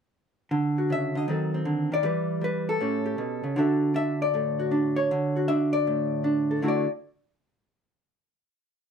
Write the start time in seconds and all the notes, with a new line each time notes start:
0.51 D3
0.78 F#4
0.90 C#3 E5
1.15 D3 D#5
1.28 D#3 F#3 C4 A4
1.54 C4
1.65 D3
1.92 D#3 D5
2.03 E3 G3 G4 B4
2.41 G3 B4
2.69 A4
2.81 A2 C#4 G4
3.06 G4
3.18 B2
3.44 C#3
3.56 D3 D4 F#4 A4 E5
3.94 D4 E5
4.22 D5
4.34 A2 A4
4.59 F#4
4.71 D4
4.96 C#5
5.11 D3
5.37 F#4
5.48 D4 E5
5.73 D5
5.87 A2
6.24 D4
6.51 A4
6.62 D3 A3 E4 F#4
6.68 D5